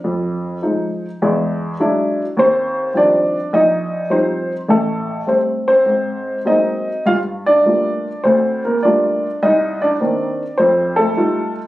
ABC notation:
X:1
M:4/4
L:1/16
Q:"Swing" 1/4=103
K:Gm
V:1 name="Upright piano"
z16 | [Cc]4 [Dd]4 [Ee]4 c3 z | [A,A]4 c2 [Cc]6 [Ee]4 | [Ff]2 [Dd]6 [Cc]2 [B,B]2 [Dd]4 |
[Ee]2 [Dd]6 [Cc]2 [A,A]4 z2 |]
V:2 name="Upright piano" clef=bass
F,,4 [F,_A,E]2 z2 [=E,,^G,]4 [^F,G,D=E]2 z2 | E,,4 [E,F,G,C]2 z2 B,,,4 [F,G,CE]2 z2 | [A,,,A,,]4 [G,A,C]2 z2 [_A,,C]4 [_G,_A,B,C]2 z2 | G,,4 [G,A,B,F]2 z2 D,,4 [G,A,B,F]2 z2 |
C,,4 [E,B,CD]2 z2 F,,4 [G,A,EF]2 z2 |]